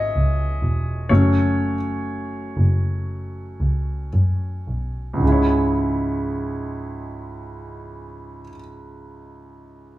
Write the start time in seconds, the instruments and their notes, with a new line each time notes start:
Already playing: double bass G#1, grand piano C#5 D#5 E5
0.16 double bass C#2
0.62 double bass E1
1.09 double bass F#1, grand piano F#3 A3 C#4 C#5
2.57 double bass F#1
3.60 double bass C#2
4.14 double bass F#2
4.67 double bass B1
5.14 grand piano C#2 G#2
5.21 double bass C#2, grand piano C#3 G#3
5.28 grand piano E4 C#5